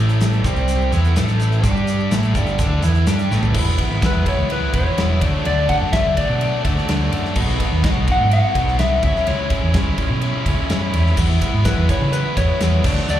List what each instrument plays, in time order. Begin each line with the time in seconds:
Already playing: fingered electric bass A1, overdriven electric guitar A2 E3 A3, tonewheel organ E4 A4 E5 A5
0.09 closed hi-hat
0.21 snare, closed hi-hat, shaker
0.33 closed hi-hat
0.43 fingered electric bass C2, overdriven electric guitar C3 G3 C4, tonewheel organ C4 G4 C5 G5, kick, snare, closed hi-hat, shaker
0.56 closed hi-hat
0.68 closed hi-hat, shaker
0.81 shaker
0.91 fingered electric bass E2, overdriven electric guitar E3 B3 E4, tonewheel organ A3 E4 A4 E5, closed hi-hat, shaker
1.04 closed hi-hat, shaker
1.16 fingered electric bass A1, overdriven electric guitar A2 E3 A3, snare, closed hi-hat, shaker
1.28 snare, closed hi-hat, shaker
1.40 closed hi-hat, shaker
1.52 closed hi-hat
1.61 fingered electric bass G2, tonewheel organ G3 D4 G4 D5, overdriven electric guitar G3 D4 G4, kick, closed hi-hat, shaker
1.76 shaker
1.87 closed hi-hat, shaker
2.00 shaker
2.10 fingered electric bass A1, overdriven electric guitar A2 E3 A3, tonewheel organ A3 E4 A4 E5, snare, closed hi-hat, shaker
2.23 closed hi-hat, shaker
2.35 fingered electric bass G1, overdriven electric guitar G2 D3 G3, kick, closed hi-hat, shaker
2.46 closed hi-hat, shaker
2.58 fingered electric bass D2, overdriven electric guitar D3 A3 D4, kick, closed hi-hat, shaker
2.82 fingered electric bass E2, overdriven electric guitar E3 B3 E4, closed hi-hat, shaker
2.95 closed hi-hat
3.06 fingered electric bass G2, overdriven electric guitar G3 D4 G4, snare, closed hi-hat, shaker
3.19 snare, closed hi-hat, shaker
3.30 fingered electric bass A1, overdriven electric guitar A2 E3 A3, snare, shaker
3.43 floor tom, shaker
3.53 fingered electric bass E1, overdriven electric guitar E3 G#3 B3 E4, tonewheel organ B3 E4 G#4 B4, kick, crash
3.78 overdriven electric guitar G#3 B3 E4, kick, ride
3.90 fingered electric bass G#1
4.01 overdriven electric guitar E3 G#3 B3 E4, kick, snare, ride
4.06 electric slide guitar B4
4.15 fingered electric bass E1
4.26 overdriven electric guitar G#3 B3 E4, electric slide guitar C#5, kick, ride
4.38 fingered electric bass C#2
4.49 overdriven electric guitar E3 G#3 B3 E4, electric slide guitar B4, ride
4.73 fingered electric bass E1, overdriven electric guitar G#3 B3 E4, electric slide guitar C#5, kick, ride
4.97 fingered electric bass E1, overdriven electric guitar E3 G#3 B3 E4, snare, ride
5.21 fingered electric bass D2, overdriven electric guitar D3 F#3 A3 D4, tonewheel organ D4 F#4 A4 D5, kick, ride
5.45 fingered electric bass D2, overdriven electric guitar D3 F#3 A3 D4, electric slide guitar D5, ride
5.69 overdriven electric guitar F#3 A3 D4, electric slide guitar F#5, kick, ride
5.81 fingered electric bass F#2
5.92 overdriven electric guitar D3 F#3 A3 D4, electric slide guitar E5, kick, snare, ride
6.06 fingered electric bass D2
6.16 overdriven electric guitar F#3 A3 D4, electric slide guitar D5, kick, ride
6.30 fingered electric bass B2
6.40 overdriven electric guitar D3 F#3 A3 D4, ride
6.63 fingered electric bass D2, overdriven electric guitar F#3 A3 D4, kick, ride
6.78 snare
6.87 fingered electric bass D2, overdriven electric guitar D3 F#3 A3 D4, snare, ride
7.11 fingered electric bass F#2, overdriven electric guitar F#3 A3 D4, ride
7.25 snare
7.35 fingered electric bass B1, overdriven electric guitar B2 F#3 B3 D#4, tonewheel organ D#4 F#4 B4 D#5, kick, crash
7.49 snare
7.59 overdriven electric guitar F#3 B3 D#4, kick, ride
7.72 fingered electric bass D#2
7.83 overdriven electric guitar B2 F#3 B3 D#4, kick, snare, ride
7.96 fingered electric bass B1
8.08 overdriven electric guitar F#3 B3 D#4, electric slide guitar F#5, kick, ride
8.20 fingered electric bass G#2
8.30 overdriven electric guitar B2 F#3 B3 D#4, electric slide guitar F#5, ride
8.54 fingered electric bass B1, overdriven electric guitar F#3 B3 D#4, kick, ride
8.68 snare
8.78 fingered electric bass C2, overdriven electric guitar B2 F#3 B3 D#4, electric slide guitar E5, snare, ride
9.02 fingered electric bass C#2, overdriven electric guitar C#3 G#3 C#4 E4, tonewheel organ E4 G#4 C#5 E5, electric slide guitar E5, kick, ride
9.16 snare
9.26 fingered electric bass C#2, overdriven electric guitar C#3 G#3 C#4 E4, electric slide guitar C#5, ride
9.50 overdriven electric guitar G#3 C#4 E4, kick, ride
9.63 fingered electric bass E2
9.74 overdriven electric guitar C#3 G#3 C#4 E4, kick, snare, ride
9.86 fingered electric bass C#2
9.98 overdriven electric guitar G#3 C#4 E4, kick, ride
10.10 fingered electric bass B2
10.21 overdriven electric guitar C#3 G#3 C#4 E4, ride
10.45 fingered electric bass C#2, overdriven electric guitar G#3 C#4 E4, kick, ride
10.69 fingered electric bass F#2, overdriven electric guitar C#3 G#3 C#4 E4, snare, ride
10.93 fingered electric bass E2, overdriven electric guitar G#3 C#4 E4, ride
11.06 snare
11.16 fingered electric bass E2, overdriven electric guitar E3 G#3 B3 E4, tonewheel organ E4 G#4 B4 E5, kick, crash, shaker
11.30 snare
11.41 overdriven electric guitar G#3 B3 E4, kick, ride, shaker
11.53 fingered electric bass G#2
11.64 overdriven electric guitar E3 G#3 B3 E4, electric slide guitar B4, kick, snare, ride, shaker
11.77 fingered electric bass E2
11.89 overdriven electric guitar G#3 B3 E4, electric slide guitar C#5, kick, ride, shaker
12.01 fingered electric bass C#3
12.12 overdriven electric guitar E3 G#3 B3 E4, electric slide guitar B4, ride, shaker
12.37 fingered electric bass E2, overdriven electric guitar G#3 B3 E4, electric slide guitar C#5, kick, ride, shaker
12.60 fingered electric bass E2, overdriven electric guitar E3 G#3 B3 E4, snare, ride, shaker
12.84 fingered electric bass D2, overdriven electric guitar D3 F#3 A3 D4, tonewheel organ D4 F#4 A4 D5, kick, crash, shaker
12.97 snare
13.08 fingered electric bass D2, overdriven electric guitar D3 F#3 A3 D4, electric slide guitar D5, shaker